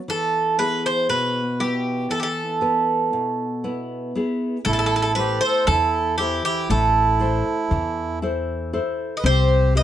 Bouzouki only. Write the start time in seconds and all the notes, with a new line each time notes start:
0.10 A4
0.59 B4
0.86 C5
1.09 B4
1.60 G4
2.11 A4
2.20 G4 A4
4.65 A4
4.73 A4
4.79 A4
4.86 A4
4.96 A4
5.02 A4
5.15 B4
5.41 C5
5.67 A4
6.18 G4
6.45 G4
6.70 A4
9.17 D#5
9.26 C5
9.77 D#5